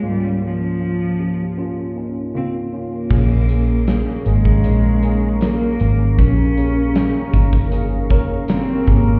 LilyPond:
<<
  \new Staff \with { instrumentName = "Ambient pad" } { \time 4/4 \key bes \dorian \tempo 4 = 78 r1 | <bes' f'' bes'' des'''>1~ | <bes' f'' bes'' des'''>1 | }
  \new Staff \with { instrumentName = "Tine electric piano" } { \time 4/4 \key bes \dorian <bes des' f'>8 <bes des' f'>8 <bes des' f'>8 <bes des' g'>8 <bes des' f'>8 <bes des' ees'>8 <des bes f'>8 <bes des' f'>8 | <bes des' aes'>8 <bes des' aes'>8 <bes des' aes'>8 <bes des' aes'>8 <bes des' ees'>8 <bes des' aes'>8 <bes des' bes'>8 <bes des' bes'>8 | <bes des' g'>8 <bes des' aes'>8 <bes des' aes'>8 <bes des' ees'>8 <bes des' aes'>8 <bes des' bes'>8 <des bes g'>8 <bes des' aes'>8 | }
  \new Staff \with { instrumentName = "Tine electric piano" } { \clef bass \time 4/4 \key bes \dorian <des, aes,>1 | <bes, f>4. r2 r8 | <bes, f>4. r2 r8 | }
  \new Staff \with { instrumentName = "Cello" } { \time 4/4 \key bes \dorian g8 f2 r8 c'8 bes8~ | bes4. aes4. bes4 | des'2 r4 c'8 bes8 | }
  \new Staff \with { instrumentName = "Fingered electric bass" } { \clef bass \time 4/4 \key bes \dorian r1 | bes,,4~ bes,,16 r16 aes,,8 bes,,4. aes,,8 | bes,,4~ bes,,16 r16 g,,2 aes,,8 | }
  \new DrumStaff \with { instrumentName = "Drums" } \drummode { \time 4/4 r4 r4 r4 r4 | <cymc bd>8 hh8 <hh sn>8 hh16 bd16 hh8 hh8 <hh sn>8 hh8 | <hh bd>8 hh8 <hh sn>8 <hh bd>16 bd16 hh8 <hh bd>8 <hh sn>8 <hh bd>8 | }
>>